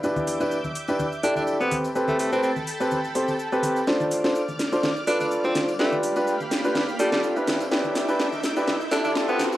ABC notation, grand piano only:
X:1
M:4/4
L:1/16
Q:"Swing 16ths" 1/4=125
K:Ephr
V:1 name="Grand piano"
[DEGB]3 [DEGB] z3 [DEGB] z2 [DEGA]3 [CGAB]2 z | [CGAB]3 [CGAB] z3 [CGAB] z2 [CGAc] z2 [CGAB]2 z | [DFAc]3 [DFAc] z3 [DFAc] z2 [DFAB]3 [DFAc]2 z | [DFGB]3 [DFGB] z3 [DFGB] z2 [DFGA]3 [DEGB]2 z |
[DEGB]3 [DEGB] z3 [DEGB] z2 [DEGA]3 [CGAB]2 z |]